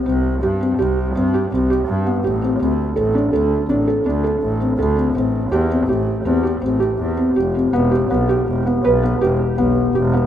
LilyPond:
<<
  \new Staff \with { instrumentName = "Felt piano" } { \time 7/4 \key e \phrygian \tempo 4 = 164 c'4 g'8 c'8 g'4 c'8 g'8 c'8 g'4 b8 g'8 c'8 | c'4 a'8 d'8 a'4 d'8 a'8 d'8 a'4 c'8 a'8 c'8 | c'4 g'8 c'8 g'4 c'8 g'8 c'8 g'4 c'8 g'8 c'8 | b8 g'8 b8 g'4 b8 b'8 b8 g'4 b4 g'8 b8 | }
  \new Staff \with { instrumentName = "Double bass" } { \clef bass \time 7/4 \key e \phrygian c,4 g,4 c,4 g,4 c,4 g,4 a,,4 | d,4 a,,4 d,4 a,,4 d,4 a,,4 d,4 | a,,4 e,4 a,,4 e,4 a,,4 e,4 f,,4 | e,,4 b,,4 e,,4 b,,4 e,,8 r8 b,,4 e,,4 | }
>>